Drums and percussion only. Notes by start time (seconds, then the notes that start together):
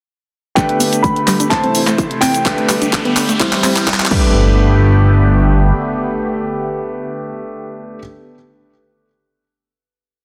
0.57 kick, clap, closed hi-hat, shaker
0.69 closed hi-hat
0.80 open hi-hat, shaker
0.93 closed hi-hat, shaker
1.04 kick, closed hi-hat, shaker
1.16 closed hi-hat
1.28 cross-stick, clap, open hi-hat, shaker
1.40 closed hi-hat, shaker
1.51 kick, clap, closed hi-hat, shaker
1.64 closed hi-hat
1.75 open hi-hat, shaker
1.87 cross-stick, clap, closed hi-hat, shaker
1.98 kick, closed hi-hat, shaker
2.11 closed hi-hat
2.22 clap, open hi-hat, shaker
2.34 closed hi-hat, shaker
2.46 kick, clap, closed hi-hat, shaker
2.58 closed hi-hat
2.69 clap, open hi-hat, shaker
2.82 closed hi-hat, shaker
2.93 kick, clap, closed hi-hat, shaker
3.05 closed hi-hat
3.17 clap, open hi-hat, shaker
3.29 closed hi-hat, shaker
3.40 kick, clap, closed hi-hat, shaker
3.53 clap, open hi-hat
3.64 clap, open hi-hat, shaker
3.76 clap, closed hi-hat, shaker
3.87 kick, clap, closed hi-hat, shaker
3.94 clap
4.00 clap
4.06 clap
4.11 kick, crash